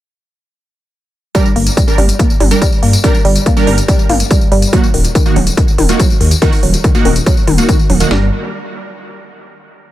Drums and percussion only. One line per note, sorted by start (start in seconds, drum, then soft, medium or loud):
1.35 kick loud
1.35 closed hi-hat medium
1.35 tambourine medium
1.45 tambourine soft
1.56 open hi-hat loud
1.67 closed hi-hat medium
1.67 tambourine medium
1.77 kick loud
1.77 closed hi-hat medium
1.77 tambourine medium
1.88 tambourine soft
1.98 open hi-hat loud
1.98 mid tom medium
2.09 closed hi-hat medium
2.09 tambourine medium
2.19 kick loud
2.19 closed hi-hat medium
2.19 tambourine medium
2.30 tambourine soft
2.40 open hi-hat loud
2.40 mid tom loud
2.51 closed hi-hat medium
2.51 tambourine medium
2.62 kick loud
2.62 closed hi-hat medium
2.62 tambourine medium
2.72 tambourine soft
2.83 open hi-hat loud
2.93 closed hi-hat medium
2.93 tambourine medium
3.04 kick loud
3.04 closed hi-hat medium
3.04 tambourine medium
3.14 tambourine soft
3.25 open hi-hat loud
3.36 closed hi-hat medium
3.36 tambourine medium
3.46 kick loud
3.46 closed hi-hat medium
3.46 tambourine medium
3.57 tambourine soft
3.67 open hi-hat loud
3.67 mid tom medium
3.78 closed hi-hat medium
3.78 tambourine medium
3.88 kick loud
3.88 closed hi-hat medium
3.88 tambourine medium
3.99 tambourine soft
4.09 open hi-hat loud
4.09 mid tom medium
4.20 closed hi-hat medium
4.20 tambourine medium
4.31 kick loud
4.31 closed hi-hat medium
4.31 tambourine medium
4.41 tambourine soft
4.52 open hi-hat loud
4.62 closed hi-hat medium
4.62 tambourine medium
4.73 kick loud
4.73 closed hi-hat medium
4.73 tambourine medium
4.83 tambourine soft
4.94 open hi-hat loud
5.05 closed hi-hat medium
5.05 tambourine medium
5.15 kick loud
5.15 closed hi-hat medium
5.15 tambourine medium
5.26 tambourine soft
5.36 open hi-hat loud
5.36 mid tom medium
5.47 closed hi-hat medium
5.47 tambourine medium
5.57 kick loud
5.57 closed hi-hat medium
5.57 tambourine medium
5.68 tambourine soft
5.78 open hi-hat loud
5.78 mid tom medium
5.89 closed hi-hat medium
5.89 tambourine medium
6.00 kick loud
6.00 closed hi-hat medium
6.00 tambourine medium
6.10 tambourine soft
6.21 open hi-hat loud
6.31 closed hi-hat medium
6.31 tambourine medium
6.42 kick loud
6.42 closed hi-hat medium
6.42 tambourine medium
6.52 open hi-hat medium
6.52 tambourine soft
6.63 open hi-hat loud
6.74 closed hi-hat medium
6.74 tambourine medium
6.84 kick loud
6.84 closed hi-hat medium
6.84 tambourine medium
6.95 tambourine soft
7.05 open hi-hat loud
7.05 mid tom medium
7.16 closed hi-hat medium
7.16 tambourine medium
7.26 kick loud
7.26 closed hi-hat medium
7.26 tambourine medium
7.37 tambourine soft
7.47 open hi-hat loud
7.47 mid tom medium
7.58 closed hi-hat medium
7.58 tambourine medium
7.69 kick loud
7.69 closed hi-hat medium
7.69 tambourine medium
7.79 tambourine soft
7.90 open hi-hat loud
7.90 mid tom medium
8.00 closed hi-hat medium
8.00 tambourine medium
8.11 snare loud